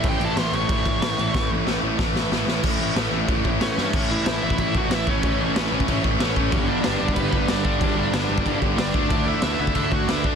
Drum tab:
CC |x-x-x-x-x-x-x-x-|----------------|x---x---x---x---|x---x---x---x---|
SD |----o-------o---|o---o---o-o-o-o-|----o-------o-o-|----o-------o---|
BD |o-------o-o-----|o-------o-------|o-------o-o-----|o------oo-o---o-|

CC |x---x---x---x---|x---x---x---x---|x---x---x---x---|x---x---x---x---|
SD |----o-------o---|----o-------o---|----o-------o---|----o-------o---|
BD |o------oo-o---o-|o------oo-o---o-|o------oo-o---o-|o------oo-o---o-|